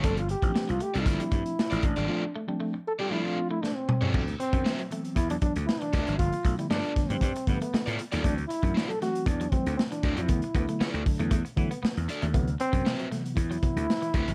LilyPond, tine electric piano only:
\new Staff \with { instrumentName = "Tine electric piano" } { \time 4/4 \key d \major \tempo 4 = 117 <f a c' d'>16 r8 <f a c' d'>8 r8 <c' d'>16 <f a c' d'>4 r4 | <f a c' f'>16 r16 <c' d'>16 <f a c' d'>8 r8 <c' d'>16 <f a c' d'>4 r8. <c' d'>16 | <e fis b c'>16 r16 <b c'>16 <e fis b d'>8 r16 <e fis b c'>8 r8 <e fis b d'>16 r16 <b c'>16 <b d'>16 r8 | <d f a b>16 r8 <d f a b>8 r16 <d f a b>8 r8 <d f a b>16 r16 <a d'>16 d'16 r8 |
<e fis a c'>16 r16 <a d'>16 <e fis a d'>8 r16 <e fis a c'>8 r8 <e fis a c'>16 r16 <a c'>16 c'16 r8 | <d fis a b>16 r8 <d fis a b>8 r16 <d fis a d'>8 r8 <d fis a b>16 r16 <a cis'>16 d'16 r8 | <c e fis b>16 r8 <c e fis b>8 r16 <c e fis b>8 r8 <c e fis b>16 r16 <fis b>16 <fis a>16 r8 | }